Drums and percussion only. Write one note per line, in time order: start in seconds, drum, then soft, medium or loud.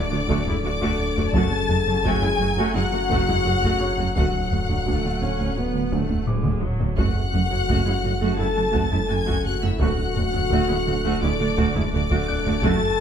0.29 taiko medium
0.46 taiko low soft
0.81 taiko medium
1.17 taiko low soft
1.34 taiko loud
1.69 taiko low medium
1.87 taiko low medium
2.05 taiko medium
3.11 taiko medium
3.29 taiko low medium
3.64 taiko medium
3.99 taiko low soft
4.16 taiko medium
4.52 taiko low medium
4.69 taiko low soft
4.86 taiko medium
5.92 taiko medium
6.10 taiko low soft
6.27 taiko low-mid medium
6.44 taiko mid medium
6.63 taiko low-mid medium
6.81 taiko low loud
6.98 taiko loud
7.34 taiko low medium
7.52 taiko low soft
7.69 taiko medium
8.76 taiko medium
8.93 taiko low soft
9.28 taiko medium
9.64 taiko low medium
9.81 taiko loud
10.16 taiko low medium
10.35 taiko low soft
10.52 taiko medium
11.58 taiko medium
11.76 taiko low medium
12.11 taiko medium
12.46 taiko low medium
12.64 taiko loud